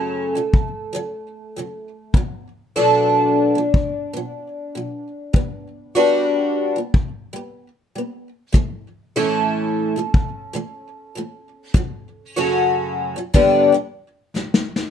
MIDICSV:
0, 0, Header, 1, 3, 480
1, 0, Start_track
1, 0, Tempo, 801068
1, 1280, Time_signature, 4, 2, 24, 8
1, 8929, End_track
2, 0, Start_track
2, 0, Title_t, "Twelve-string acoustic guitar"
2, 0, Program_c, 0, 25
2, 0, Note_on_c, 0, 42, 51
2, 0, Note_on_c, 0, 49, 59
2, 0, Note_on_c, 0, 54, 56
2, 0, Note_on_c, 0, 57, 61
2, 0, Note_on_c, 0, 61, 59
2, 0, Note_on_c, 0, 69, 65
2, 204, Note_off_c, 0, 42, 0
2, 211, Note_on_c, 0, 42, 42
2, 212, Note_off_c, 0, 49, 0
2, 213, Note_off_c, 0, 61, 0
2, 219, Note_on_c, 0, 49, 46
2, 222, Note_off_c, 0, 54, 0
2, 225, Note_on_c, 0, 54, 46
2, 399, Note_off_c, 0, 42, 0
2, 403, Note_off_c, 0, 49, 0
2, 406, Note_off_c, 0, 54, 0
2, 556, Note_on_c, 0, 42, 54
2, 567, Note_on_c, 0, 49, 65
2, 574, Note_on_c, 0, 54, 59
2, 755, Note_off_c, 0, 42, 0
2, 760, Note_off_c, 0, 49, 0
2, 764, Note_off_c, 0, 54, 0
2, 937, Note_on_c, 0, 42, 42
2, 946, Note_on_c, 0, 49, 44
2, 953, Note_on_c, 0, 54, 48
2, 1122, Note_off_c, 0, 42, 0
2, 1126, Note_off_c, 0, 49, 0
2, 1130, Note_off_c, 0, 54, 0
2, 1283, Note_on_c, 0, 47, 58
2, 1299, Note_on_c, 0, 54, 64
2, 1301, Note_off_c, 0, 57, 0
2, 1301, Note_off_c, 0, 69, 0
2, 1478, Note_off_c, 0, 47, 0
2, 1486, Note_off_c, 0, 54, 0
2, 1653, Note_on_c, 0, 69, 71
2, 1655, Note_on_c, 0, 62, 62
2, 1658, Note_on_c, 0, 57, 57
2, 1660, Note_on_c, 0, 54, 58
2, 1662, Note_on_c, 0, 47, 49
2, 2121, Note_off_c, 0, 47, 0
2, 2128, Note_on_c, 0, 47, 43
2, 2133, Note_off_c, 0, 69, 0
2, 2135, Note_off_c, 0, 57, 0
2, 2142, Note_off_c, 0, 54, 0
2, 2145, Note_on_c, 0, 54, 53
2, 2318, Note_off_c, 0, 47, 0
2, 2326, Note_off_c, 0, 54, 0
2, 2477, Note_on_c, 0, 47, 54
2, 2496, Note_on_c, 0, 54, 61
2, 2676, Note_off_c, 0, 47, 0
2, 2685, Note_off_c, 0, 54, 0
2, 2846, Note_on_c, 0, 47, 47
2, 2860, Note_on_c, 0, 54, 50
2, 3037, Note_off_c, 0, 47, 0
2, 3043, Note_off_c, 0, 54, 0
2, 3196, Note_on_c, 0, 55, 55
2, 3211, Note_on_c, 0, 59, 69
2, 3395, Note_off_c, 0, 55, 0
2, 3402, Note_off_c, 0, 59, 0
2, 3566, Note_on_c, 0, 66, 66
2, 3570, Note_off_c, 0, 62, 0
2, 3572, Note_on_c, 0, 62, 65
2, 3574, Note_on_c, 0, 59, 59
2, 3577, Note_on_c, 0, 55, 58
2, 4042, Note_off_c, 0, 55, 0
2, 4049, Note_off_c, 0, 66, 0
2, 4050, Note_on_c, 0, 55, 45
2, 4052, Note_off_c, 0, 62, 0
2, 4053, Note_off_c, 0, 59, 0
2, 4063, Note_on_c, 0, 59, 49
2, 4238, Note_off_c, 0, 55, 0
2, 4245, Note_off_c, 0, 59, 0
2, 4392, Note_on_c, 0, 55, 56
2, 4409, Note_on_c, 0, 59, 56
2, 4593, Note_off_c, 0, 55, 0
2, 4601, Note_off_c, 0, 59, 0
2, 4766, Note_on_c, 0, 55, 42
2, 4782, Note_on_c, 0, 59, 54
2, 4956, Note_off_c, 0, 55, 0
2, 4964, Note_off_c, 0, 59, 0
2, 5108, Note_on_c, 0, 45, 60
2, 5118, Note_on_c, 0, 52, 65
2, 5125, Note_on_c, 0, 57, 67
2, 5311, Note_off_c, 0, 45, 0
2, 5316, Note_off_c, 0, 52, 0
2, 5319, Note_off_c, 0, 57, 0
2, 5488, Note_on_c, 0, 69, 64
2, 5490, Note_on_c, 0, 64, 66
2, 5492, Note_on_c, 0, 61, 61
2, 5493, Note_on_c, 0, 57, 59
2, 5494, Note_on_c, 0, 52, 55
2, 5498, Note_on_c, 0, 45, 56
2, 5961, Note_off_c, 0, 45, 0
2, 5968, Note_on_c, 0, 45, 46
2, 5969, Note_off_c, 0, 52, 0
2, 5970, Note_off_c, 0, 64, 0
2, 5976, Note_on_c, 0, 52, 46
2, 5982, Note_off_c, 0, 57, 0
2, 5984, Note_on_c, 0, 57, 52
2, 6157, Note_off_c, 0, 45, 0
2, 6161, Note_off_c, 0, 52, 0
2, 6165, Note_off_c, 0, 57, 0
2, 6311, Note_on_c, 0, 45, 61
2, 6320, Note_on_c, 0, 52, 59
2, 6327, Note_on_c, 0, 57, 59
2, 6512, Note_off_c, 0, 45, 0
2, 6516, Note_off_c, 0, 52, 0
2, 6520, Note_off_c, 0, 57, 0
2, 6683, Note_on_c, 0, 45, 45
2, 6694, Note_on_c, 0, 52, 50
2, 6700, Note_on_c, 0, 57, 52
2, 6874, Note_off_c, 0, 45, 0
2, 6879, Note_off_c, 0, 52, 0
2, 6882, Note_off_c, 0, 57, 0
2, 7034, Note_on_c, 0, 42, 61
2, 7044, Note_on_c, 0, 49, 61
2, 7050, Note_on_c, 0, 54, 68
2, 7233, Note_off_c, 0, 42, 0
2, 7238, Note_off_c, 0, 49, 0
2, 7241, Note_off_c, 0, 54, 0
2, 7406, Note_off_c, 0, 69, 0
2, 7408, Note_on_c, 0, 66, 64
2, 7412, Note_off_c, 0, 61, 0
2, 7412, Note_on_c, 0, 61, 60
2, 7416, Note_on_c, 0, 54, 60
2, 7416, Note_on_c, 0, 57, 59
2, 7418, Note_on_c, 0, 49, 58
2, 7422, Note_on_c, 0, 42, 54
2, 7878, Note_off_c, 0, 42, 0
2, 7885, Note_on_c, 0, 42, 47
2, 7888, Note_off_c, 0, 49, 0
2, 7888, Note_off_c, 0, 66, 0
2, 7891, Note_off_c, 0, 61, 0
2, 7892, Note_off_c, 0, 54, 0
2, 7892, Note_off_c, 0, 57, 0
2, 7895, Note_on_c, 0, 49, 53
2, 7900, Note_on_c, 0, 54, 50
2, 7988, Note_off_c, 0, 42, 0
2, 7991, Note_off_c, 0, 49, 0
2, 7991, Note_on_c, 0, 43, 63
2, 7993, Note_on_c, 0, 50, 68
2, 7995, Note_off_c, 0, 54, 0
2, 7997, Note_on_c, 0, 59, 70
2, 7998, Note_on_c, 0, 55, 69
2, 8000, Note_on_c, 0, 62, 65
2, 8003, Note_on_c, 0, 67, 72
2, 8216, Note_off_c, 0, 43, 0
2, 8223, Note_on_c, 0, 43, 57
2, 8227, Note_off_c, 0, 50, 0
2, 8234, Note_off_c, 0, 55, 0
2, 8234, Note_on_c, 0, 50, 63
2, 8237, Note_off_c, 0, 59, 0
2, 8238, Note_off_c, 0, 62, 0
2, 8240, Note_off_c, 0, 67, 0
2, 8241, Note_on_c, 0, 55, 62
2, 8427, Note_off_c, 0, 43, 0
2, 8432, Note_off_c, 0, 50, 0
2, 8435, Note_off_c, 0, 55, 0
2, 8598, Note_on_c, 0, 43, 48
2, 8606, Note_on_c, 0, 50, 52
2, 8614, Note_on_c, 0, 55, 50
2, 8790, Note_off_c, 0, 43, 0
2, 8794, Note_off_c, 0, 50, 0
2, 8798, Note_off_c, 0, 55, 0
2, 8929, End_track
3, 0, Start_track
3, 0, Title_t, "Drums"
3, 321, Note_on_c, 9, 36, 97
3, 381, Note_off_c, 9, 36, 0
3, 1282, Note_on_c, 9, 36, 102
3, 1342, Note_off_c, 9, 36, 0
3, 2241, Note_on_c, 9, 36, 100
3, 2301, Note_off_c, 9, 36, 0
3, 3200, Note_on_c, 9, 36, 99
3, 3260, Note_off_c, 9, 36, 0
3, 4159, Note_on_c, 9, 36, 100
3, 4219, Note_off_c, 9, 36, 0
3, 5118, Note_on_c, 9, 36, 97
3, 5178, Note_off_c, 9, 36, 0
3, 6076, Note_on_c, 9, 36, 93
3, 6136, Note_off_c, 9, 36, 0
3, 7037, Note_on_c, 9, 36, 102
3, 7097, Note_off_c, 9, 36, 0
3, 7995, Note_on_c, 9, 36, 102
3, 8055, Note_off_c, 9, 36, 0
3, 8604, Note_on_c, 9, 38, 62
3, 8664, Note_off_c, 9, 38, 0
3, 8712, Note_on_c, 9, 38, 81
3, 8772, Note_off_c, 9, 38, 0
3, 8844, Note_on_c, 9, 38, 71
3, 8904, Note_off_c, 9, 38, 0
3, 8929, End_track
0, 0, End_of_file